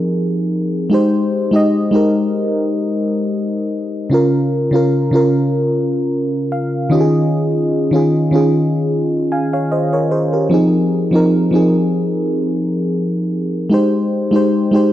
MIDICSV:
0, 0, Header, 1, 2, 480
1, 0, Start_track
1, 0, Key_signature, -4, "major"
1, 0, Tempo, 800000
1, 545, Time_signature, 4, 2, 24, 8
1, 8957, End_track
2, 0, Start_track
2, 0, Title_t, "FM electric piano"
2, 0, Program_c, 0, 5
2, 0, Control_c, 0, 64, 127
2, 0, Note_on_c, 0, 53, 86
2, 0, Note_on_c, 0, 60, 76
2, 0, Note_on_c, 0, 63, 78
2, 0, Note_on_c, 0, 68, 93
2, 0, Note_on_c, 0, 70, 93
2, 538, Note_on_c, 0, 56, 77
2, 547, Note_off_c, 0, 63, 0
2, 547, Note_on_c, 0, 63, 71
2, 552, Control_c, 0, 64, 0
2, 553, Note_off_c, 0, 68, 0
2, 553, Note_off_c, 0, 70, 0
2, 556, Note_off_c, 0, 60, 0
2, 556, Note_on_c, 0, 67, 72
2, 557, Note_off_c, 0, 53, 0
2, 565, Note_on_c, 0, 72, 90
2, 673, Control_c, 0, 64, 127
2, 762, Note_off_c, 0, 56, 0
2, 767, Note_off_c, 0, 63, 0
2, 772, Note_off_c, 0, 67, 0
2, 776, Note_off_c, 0, 72, 0
2, 907, Note_on_c, 0, 56, 77
2, 916, Note_on_c, 0, 63, 73
2, 925, Note_on_c, 0, 67, 74
2, 934, Note_on_c, 0, 75, 91
2, 1050, Note_off_c, 0, 56, 0
2, 1054, Note_off_c, 0, 63, 0
2, 1059, Note_off_c, 0, 67, 0
2, 1063, Note_off_c, 0, 75, 0
2, 1146, Note_on_c, 0, 56, 77
2, 1155, Note_on_c, 0, 63, 70
2, 1164, Note_on_c, 0, 67, 71
2, 1173, Note_on_c, 0, 70, 82
2, 1728, Note_off_c, 0, 56, 0
2, 1732, Note_off_c, 0, 63, 0
2, 1736, Note_off_c, 0, 67, 0
2, 1741, Note_off_c, 0, 70, 0
2, 2458, Note_on_c, 0, 49, 77
2, 2467, Note_on_c, 0, 61, 72
2, 2472, Control_c, 0, 64, 0
2, 2476, Note_on_c, 0, 65, 72
2, 2485, Note_on_c, 0, 70, 84
2, 2575, Control_c, 0, 64, 127
2, 2683, Note_off_c, 0, 49, 0
2, 2687, Note_off_c, 0, 61, 0
2, 2691, Note_off_c, 0, 65, 0
2, 2696, Note_off_c, 0, 70, 0
2, 2826, Note_on_c, 0, 49, 81
2, 2836, Note_on_c, 0, 61, 72
2, 2845, Note_on_c, 0, 65, 74
2, 2854, Note_on_c, 0, 70, 87
2, 2969, Note_off_c, 0, 49, 0
2, 2974, Note_off_c, 0, 61, 0
2, 2978, Note_off_c, 0, 65, 0
2, 2983, Note_off_c, 0, 70, 0
2, 3067, Note_on_c, 0, 49, 80
2, 3076, Note_on_c, 0, 61, 72
2, 3084, Note_on_c, 0, 65, 73
2, 3093, Note_on_c, 0, 70, 86
2, 3648, Note_off_c, 0, 49, 0
2, 3653, Note_off_c, 0, 61, 0
2, 3657, Note_off_c, 0, 65, 0
2, 3661, Note_off_c, 0, 70, 0
2, 3912, Note_on_c, 0, 77, 65
2, 4132, Note_off_c, 0, 77, 0
2, 4137, Note_on_c, 0, 51, 84
2, 4146, Note_on_c, 0, 61, 78
2, 4150, Note_on_c, 0, 75, 72
2, 4153, Control_c, 0, 64, 0
2, 4155, Note_on_c, 0, 65, 81
2, 4164, Note_on_c, 0, 67, 80
2, 4197, Note_off_c, 0, 67, 0
2, 4203, Note_on_c, 0, 68, 98
2, 4246, Control_c, 0, 64, 127
2, 4371, Note_off_c, 0, 75, 0
2, 4621, Note_off_c, 0, 51, 0
2, 4625, Note_off_c, 0, 61, 0
2, 4630, Note_off_c, 0, 65, 0
2, 4654, Note_off_c, 0, 68, 0
2, 4747, Note_on_c, 0, 51, 80
2, 4756, Note_on_c, 0, 61, 74
2, 4764, Note_on_c, 0, 65, 71
2, 4774, Note_on_c, 0, 68, 88
2, 4890, Note_off_c, 0, 51, 0
2, 4894, Note_off_c, 0, 61, 0
2, 4898, Note_off_c, 0, 65, 0
2, 4903, Note_off_c, 0, 68, 0
2, 4987, Note_on_c, 0, 51, 82
2, 4995, Note_on_c, 0, 61, 72
2, 5003, Note_on_c, 0, 65, 73
2, 5013, Note_on_c, 0, 68, 91
2, 5568, Note_off_c, 0, 51, 0
2, 5572, Note_off_c, 0, 61, 0
2, 5576, Note_off_c, 0, 65, 0
2, 5581, Note_off_c, 0, 68, 0
2, 5591, Note_on_c, 0, 80, 61
2, 5594, Note_on_c, 0, 77, 52
2, 5711, Note_off_c, 0, 80, 0
2, 5712, Note_off_c, 0, 77, 0
2, 5719, Note_on_c, 0, 77, 68
2, 5723, Note_on_c, 0, 73, 56
2, 5822, Note_off_c, 0, 77, 0
2, 5824, Note_off_c, 0, 73, 0
2, 5829, Note_on_c, 0, 75, 66
2, 5833, Note_on_c, 0, 72, 56
2, 5950, Note_off_c, 0, 75, 0
2, 5952, Note_off_c, 0, 72, 0
2, 5958, Note_on_c, 0, 73, 69
2, 5961, Note_on_c, 0, 70, 57
2, 6061, Note_off_c, 0, 73, 0
2, 6063, Note_off_c, 0, 70, 0
2, 6068, Note_on_c, 0, 72, 70
2, 6072, Note_on_c, 0, 68, 56
2, 6190, Note_off_c, 0, 72, 0
2, 6192, Note_off_c, 0, 68, 0
2, 6199, Note_on_c, 0, 70, 58
2, 6202, Note_on_c, 0, 67, 52
2, 6297, Note_on_c, 0, 53, 77
2, 6305, Note_on_c, 0, 60, 70
2, 6313, Control_c, 0, 64, 0
2, 6314, Note_on_c, 0, 63, 73
2, 6323, Note_on_c, 0, 68, 84
2, 6415, Control_c, 0, 64, 127
2, 6425, Note_off_c, 0, 70, 0
2, 6427, Note_off_c, 0, 67, 0
2, 6522, Note_off_c, 0, 53, 0
2, 6526, Note_off_c, 0, 60, 0
2, 6531, Note_off_c, 0, 63, 0
2, 6535, Note_off_c, 0, 68, 0
2, 6667, Note_on_c, 0, 53, 78
2, 6676, Note_on_c, 0, 60, 74
2, 6685, Note_on_c, 0, 63, 76
2, 6693, Note_on_c, 0, 70, 88
2, 6809, Note_off_c, 0, 53, 0
2, 6814, Note_off_c, 0, 60, 0
2, 6819, Note_off_c, 0, 63, 0
2, 6823, Note_off_c, 0, 70, 0
2, 6906, Note_on_c, 0, 53, 77
2, 6915, Note_on_c, 0, 60, 74
2, 6924, Note_on_c, 0, 63, 68
2, 6933, Note_on_c, 0, 68, 84
2, 7487, Note_off_c, 0, 53, 0
2, 7492, Note_off_c, 0, 60, 0
2, 7497, Note_off_c, 0, 63, 0
2, 7501, Note_off_c, 0, 68, 0
2, 8217, Note_on_c, 0, 56, 78
2, 8226, Note_on_c, 0, 63, 69
2, 8232, Control_c, 0, 64, 0
2, 8235, Note_on_c, 0, 67, 70
2, 8243, Note_on_c, 0, 72, 85
2, 8323, Control_c, 0, 64, 127
2, 8442, Note_off_c, 0, 56, 0
2, 8447, Note_off_c, 0, 63, 0
2, 8451, Note_off_c, 0, 67, 0
2, 8455, Note_off_c, 0, 72, 0
2, 8587, Note_on_c, 0, 56, 80
2, 8596, Note_on_c, 0, 63, 72
2, 8604, Note_on_c, 0, 67, 69
2, 8614, Note_on_c, 0, 72, 89
2, 8730, Note_off_c, 0, 56, 0
2, 8734, Note_off_c, 0, 63, 0
2, 8738, Note_off_c, 0, 67, 0
2, 8743, Note_off_c, 0, 72, 0
2, 8828, Note_on_c, 0, 56, 78
2, 8837, Note_on_c, 0, 63, 72
2, 8846, Note_on_c, 0, 67, 77
2, 8855, Note_on_c, 0, 72, 85
2, 8957, Note_off_c, 0, 56, 0
2, 8957, Note_off_c, 0, 63, 0
2, 8957, Note_off_c, 0, 67, 0
2, 8957, Note_off_c, 0, 72, 0
2, 8957, End_track
0, 0, End_of_file